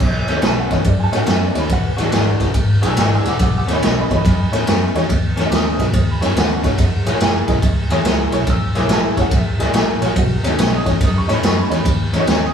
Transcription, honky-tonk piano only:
0.28 A4 C#5
0.35 D#4 F#4 A4 C#5
0.42 G#5
0.47 A5
0.60 F#5
0.71 D#4 F#4 A4 B4 C#5
0.89 D5
1.00 G#5 A5
1.12 D#4 F#4 A4 C#5
1.17 F#5
1.32 B4
1.46 D5
1.55 D#4 F#4 A4 C#5
1.59 B5
1.73 F#5
1.87 B4
1.98 G#4 B4 D5
2.04 D4 F#4 G#4 B4
2.16 B4
2.40 D4 F#4 G#4 B4
2.82 D4 F#4 G#4 B4 D#6
2.86 G#5 E6
3.00 G#5 E6
3.15 G#5 E6
3.24 D4 F#4 G#4 B4
3.28 F#5 D6
3.43 F#5 D6
3.58 F#5 D6
3.67 A4 C#5
3.72 D#4 F#4 A4 C#5 D#5 B5
3.87 D#5 B5
4.00 D#5 B5
4.10 D#4 F#4 A4 C#5
4.15 D#5 B5
4.52 D#4 F#4 A4 C#5
4.95 D#4 F#4 A4 C#5
5.38 A4 C#5
5.45 D#4 F#4 A4 D#5
5.51 D6
5.55 D#6
5.80 D#4 F#4 A4 B4
6.11 B5
6.22 D#4 F#4 A4 C#5
6.26 G#5
6.40 A4 F#5
6.64 D#4 F#4 A4 C#5
7.05 A#4 C#5
7.14 E4 G#4 A#4 C#5
7.48 E4 G#4 A#4 D#5
7.91 E4 G#4 A#4 C#5
8.33 E4 G#4 A#4 C#5
8.50 E6
8.74 A#4 C#5
8.79 E4 G#4 A#4 C#5 D6
8.93 A5
9.16 E4 G#4 A#4 C#5
9.21 F#5
9.37 E5
9.59 E4 G#4 A#4 D#5
9.65 D5
9.78 A4
10.01 E4 G#4 A#4 C#5
10.05 F#4
10.18 F#4
10.43 A4 C#5
10.49 D#4 F#4 A4 D#5
10.76 D#6
10.85 D#4 F#4 A4 C#5
11.05 D#6
11.18 C#6
11.28 D#4 F#4 A4 C#5
11.33 B5
11.47 C#6
11.61 B5
11.70 D#4 F#4 A4 C#5
12.13 A4 C#5
12.20 D#4 F#4 A4 C#5
12.46 D#6

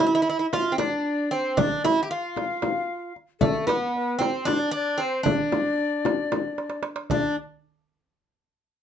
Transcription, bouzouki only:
0.06 E4
0.15 E4
0.22 E4
0.30 E4
0.39 E4
0.53 F4
0.72 C4
0.78 D4
1.31 C4
1.57 D4
1.85 E4
2.03 G4
2.11 F4
3.41 A3
3.67 B3
4.19 C4
4.45 D4
4.71 D4
4.98 C4
5.23 D4
7.11 D4

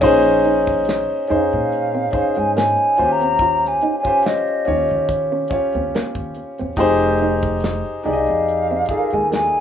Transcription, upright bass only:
0.03 A#1
1.30 F2
1.53 A#2
2.14 muted upright bass stroke
2.37 G#2
2.99 D#2
4.67 D#2
4.91 D#3
5.52 muted upright bass stroke
5.75 D#2
5.94 muted upright bass stroke
6.16 D#2
6.61 E2
6.78 F1
8.06 C2
8.29 F2
8.90 muted upright bass stroke
9.13 D#2

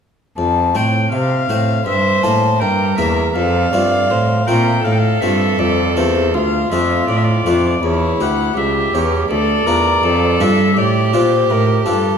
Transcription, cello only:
0.38 F2
0.75 A2
1.13 C3
1.50 A2
1.88 G2
2.24 A2
2.61 G2
2.99 E2
3.36 F2
3.73 G2
4.10 A2
4.49 A#2
4.85 A2
5.22 G2
5.60 F2
5.97 E2
6.34 D2
6.71 F2
7.08 A2
7.46 F2
7.83 E2
8.20 D2
8.57 C#2
8.94 E2
9.30 D2
9.67 E2
10.03 F2
10.40 G2
10.76 A2
11.14 A#2
11.50 A2
11.87 G2

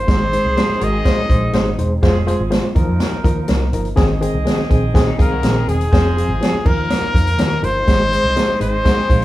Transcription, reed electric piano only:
0.08 G#3 D#4 C5
0.33 G#3 D#4 C5
0.57 G#3 D#4 C5
0.81 G#3 D#4 F#4
1.05 G#3 D#4 C5
1.29 G#3 D#4 C5
1.54 G#3 D#4 C5
1.79 G#3 D#4 C5
2.03 G#3 F4 C5
2.27 G#3 F4 C5
2.50 G#3 F4 C5
2.75 E3 D#4 A#4
2.81 F3
3.24 F3 D#4 A#4
3.48 F3 D#4 A#4
3.73 F3 D#4 A#4
3.96 D#3 C4 G#4
4.21 D#3 C4 G#4
4.46 D#3 C4 G#4
4.69 D#3 C4 G#4
4.94 D#3 C4 G#4
5.18 D#3 C4 G#4
5.43 D#3 C4 G#4
5.67 D#3 C4 G#4
5.93 F3 C4 G#4
6.17 F3 C4 G#4
6.41 F3 C4 G#4
6.65 F3 D#4 A#4
7.14 F3 D#4 A#4
7.39 F3 D#4 A#4
7.63 F3 D#4 A#4
7.87 G#3 D#4 C5
8.12 G#3 D#4 C5
8.36 G#3 D#4 C5
8.60 G#3 D#4 C5
8.85 G#3 D#4 C5
9.09 G#3 D#4 C5

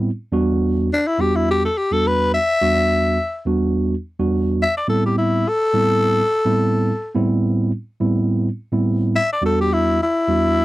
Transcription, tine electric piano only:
0.32 E2 G3 B3 D4 F#4
1.19 E2 G3 B3 D4 F#4
1.91 E2 G3 B3 D4 F#4
2.61 E2 G3 B3 D4 F#4
3.45 E2 G3 B3 D4 F#4
4.19 E2 G3 B3 D4 F#4
4.88 A2 G3 B3 C4 E4
5.74 A2 G3 B3 C4 E4
6.45 A2 G3 B3 C4 E4
7.15 A2 G3 B3 C4 E4
8.00 A2 G3 B3 C4 E4
8.72 A2 G3 B3 C4 E4
9.41 E2 G3 B3 D4 F#4
10.28 E2 G3 B3 D4 F#4

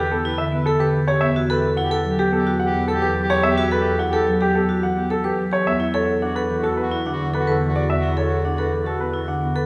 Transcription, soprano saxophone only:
Already playing: B4
0.22 B4
0.51 B4
0.79 B4
1.23 G4
1.51 G4
1.80 G4
2.08 G4
2.36 G4
2.65 G4
2.94 G4
3.22 G4
3.50 G4
3.80 G4
4.09 G4
4.37 G4
4.66 G4
4.95 G4
5.24 G4
5.66 F#4
5.95 F#4
6.24 F#4
6.53 F#4
6.81 F#4
7.10 F#4
7.39 F#4
7.67 F#4
7.96 F#4
8.24 F#4
8.52 F#4
8.82 F#4
9.11 F#4
9.40 F#4

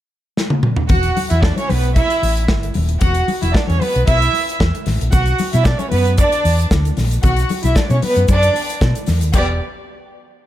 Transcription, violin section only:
0.89 F#4 F#5
1.30 E4 E5
1.43 D4 D5
1.58 C#4 C#5
1.70 B3 B4
1.96 E4 E5
3.00 F#4 F#5
3.41 E4 E5
3.54 D4 D5
3.68 C#4 C#5
3.81 B3 B4
4.07 E4 E5
5.12 F#4 F#5
5.53 E4 E5
5.65 D4 D5
5.79 C#4 C#5
5.90 B3 B4
6.18 D4 D5
7.22 F#4 F#5
7.63 E4 E5
7.75 D4 D5
7.91 C#4 C#5
8.04 B3 B4
8.29 D4 D5
9.34 B3 G4 D5

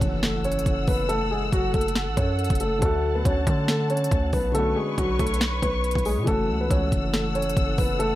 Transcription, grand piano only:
Already playing: C#4 C#5
0.23 A3 A4
0.45 C#4 C#5
0.88 B3 B4
1.09 A3 A4
1.31 G#3 G#4
1.53 F#3 F#4
1.74 A3 A4
2.17 C#4 C#5
2.60 A3 A4
2.82 A3 A4
3.15 B3 B4
3.25 C#4 C#5
3.69 A3 A4
3.90 C#4 C#5
4.33 B3 B4
4.54 A3 A4
4.76 G#3 G#4
4.98 F#3 F#4
5.19 A3 A4
5.62 B3 B4
6.06 G#3 G#4
6.27 A3 A4
6.60 B3 B4
6.70 C#4 C#5
7.13 A3 A4
7.35 C#4 C#5
7.78 B3 B4
7.99 A3 A4

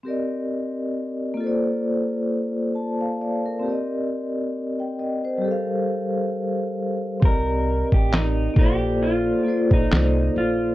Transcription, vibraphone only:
0.03 C4 G4 A#4
0.08 D5 D#5
1.34 A#3 F4
1.41 A4 C5
1.47 D5
2.75 A5
3.01 F5
3.21 D5
3.46 A#4
3.59 C4 G4
3.66 A#4 D5
3.72 D#5
4.80 G5
5.00 D#5
5.25 C5
5.38 G3 G4
5.44 A4 A#4
5.51 F5
7.20 C4 G4 A#4
7.25 D5 D#5
8.54 A#3 F4 A4
8.59 C5 D5
9.43 A#3 F4 A4
9.48 C5 D5

